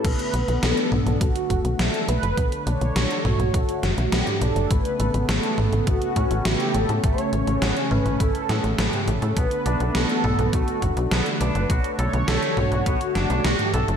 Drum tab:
CC |x---------------|----------------|----------------|----------------|
HH |xxxxxx-xxxxxxxxx|xxxxxx-xxxxxxxxx|xxxxxx-xxxxxxxxx|xxxxxx-xxxxxxxxx|
SD |----o-------o---|----o-----o-o---|----o-------o---|----o-----o-o---|
T2 |------o---------|------o------o--|------o---------|------o------o--|
BD |o-------o-o-----|o-------o-------|o-------o-o-----|o-------o-------|

CC |----------------|----------------|
HH |xxxxxx-xxxxxxxxx|xxxxxx-xxxxxxxxx|
SD |----o-------o---|----o-----o-o---|
T2 |------o---------|------o------o--|
BD |o-------o-o-----|o-------o-------|